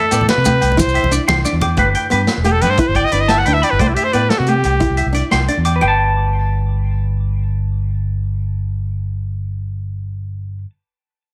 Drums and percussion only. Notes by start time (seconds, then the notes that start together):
0.11 closed hi-hat, low agogo, maracas
0.21 high conga, low conga
0.28 snare, closed hi-hat, muted conga
0.45 closed hi-hat, high conga, low conga, low agogo, maracas
0.61 closed hi-hat, low agogo
0.72 low conga
0.78 kick, closed hi-hat, muted conga, high conga, maracas
0.89 maracas
0.94 closed hi-hat, low agogo
1.04 high conga, low conga
1.11 closed hi-hat, maracas
1.28 snare, closed hi-hat, muted conga, high conga, low conga, low agogo
1.36 low conga
1.45 snare, closed hi-hat, maracas
1.53 low conga
1.61 closed hi-hat, high conga, low conga, low agogo
1.69 low conga
1.77 kick, closed hi-hat, low agogo
1.94 closed hi-hat
2.11 closed hi-hat, low agogo
2.27 snare, closed hi-hat
2.45 closed hi-hat, low agogo
2.61 closed hi-hat, low agogo
2.77 kick, closed hi-hat
2.95 kick, closed hi-hat, low agogo
3.12 closed hi-hat
3.28 snare, closed hi-hat, low agogo
3.46 closed hi-hat
3.63 closed hi-hat, low agogo
3.79 kick, closed hi-hat, low agogo
3.96 closed hi-hat
4.13 closed hi-hat, low agogo
4.30 snare, closed hi-hat
4.47 closed hi-hat, low agogo
4.64 closed hi-hat, low agogo
4.80 kick, closed hi-hat
4.97 closed hi-hat, low agogo
5.14 closed hi-hat
5.31 snare, closed hi-hat, low agogo
5.48 closed hi-hat
5.65 closed hi-hat, low agogo
5.82 low agogo